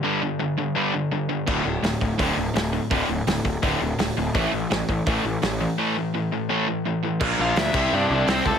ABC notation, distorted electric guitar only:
X:1
M:4/4
L:1/8
Q:1/4=167
K:Amix
V:1 name="Distorted electric guitar" clef=bass
[G,,D,G,] [G,,D,] [G,,D,] [G,,D,] [G,,D,G,] [G,,D,] [G,,D,] [G,,D,] | [D,,A,,D,] [D,,A,,] [D,,A,,] [D,,A,,] [D,,A,,D,] [D,,A,,] [D,,A,,] [D,,A,,] | [D,,A,,D,] [D,,A,,] [D,,A,,] [D,,A,,] [D,,A,,D,] [D,,A,,] [D,,A,,] [D,,A,,] | [A,,E,A,] [A,,E,] [A,,E,] [A,,E,] [A,,E,A,] [A,,E,] [A,,E,] [A,,E,] |
[A,,E,A,] [A,,E,] [A,,E,] [A,,E,] [A,,E,A,] [A,,E,] [A,,E,] [A,,E,] | [_B,,=F,_B,D=F_B]3 [=C,G,=CEG=c]4- [C,G,CEGc] |]